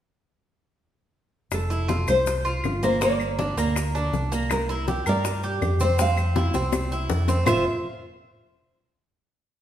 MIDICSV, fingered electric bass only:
0, 0, Header, 1, 2, 480
1, 0, Start_track
1, 0, Key_signature, -1, "major"
1, 0, Tempo, 371978
1, 1959, Time_signature, 4, 2, 24, 8
1, 12402, End_track
2, 0, Start_track
2, 0, Title_t, "Fingered electric bass"
2, 0, Program_c, 0, 33
2, 1953, Note_on_c, 0, 29, 82
2, 2629, Note_off_c, 0, 29, 0
2, 2673, Note_on_c, 0, 36, 86
2, 3350, Note_off_c, 0, 36, 0
2, 3402, Note_on_c, 0, 31, 92
2, 4532, Note_off_c, 0, 31, 0
2, 4601, Note_on_c, 0, 38, 81
2, 5276, Note_off_c, 0, 38, 0
2, 5327, Note_on_c, 0, 36, 92
2, 6452, Note_off_c, 0, 36, 0
2, 6535, Note_on_c, 0, 43, 81
2, 7200, Note_off_c, 0, 43, 0
2, 7244, Note_on_c, 0, 41, 91
2, 8365, Note_off_c, 0, 41, 0
2, 8439, Note_on_c, 0, 36, 89
2, 9106, Note_off_c, 0, 36, 0
2, 9154, Note_on_c, 0, 41, 83
2, 9578, Note_off_c, 0, 41, 0
2, 9626, Note_on_c, 0, 29, 94
2, 9853, Note_off_c, 0, 29, 0
2, 12402, End_track
0, 0, End_of_file